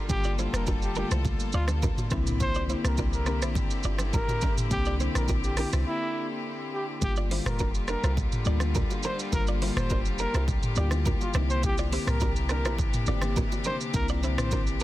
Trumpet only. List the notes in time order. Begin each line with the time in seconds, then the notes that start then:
0.10 G4
0.54 A#4
0.83 G4
0.97 G4
1.55 F4
2.41 C5
2.85 A#4
3.14 A#4
3.28 A#4
4.14 A#4
4.72 G4
5.16 A#4
5.45 G4
5.59 G4
5.87 E4
6.74 G4
7.03 G4
7.47 A#4
7.90 A#4
9.05 C5
9.34 A#4
9.77 C5
10.20 A#4
10.78 G4
11.22 F4
11.50 C5
11.64 G4
12.08 A#4
12.51 A#4
13.66 C5
13.95 A#4
14.39 C5